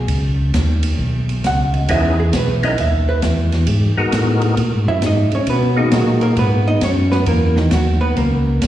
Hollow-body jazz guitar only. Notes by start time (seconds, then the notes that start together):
1.47 F#5
1.75 D#5
1.91 E5
2.20 G#4
2.36 B4
2.65 D#5
2.80 E5
3.09 B4
4.88 E4 E5
5.06 D#4 D#5
5.35 C#4 C#5
5.50 B3 B4
5.79 D#3 D#4
5.95 F#3 F#4
6.23 A#3 A#4
6.39 B3 B4
6.68 D#4 D#5
6.84 C#4 C#5
7.12 B3 B4
7.28 A#3 A#4
7.56 D#3 D#4
7.73 F#3 F#4
8.01 B3 B4
8.17 A#3 A#4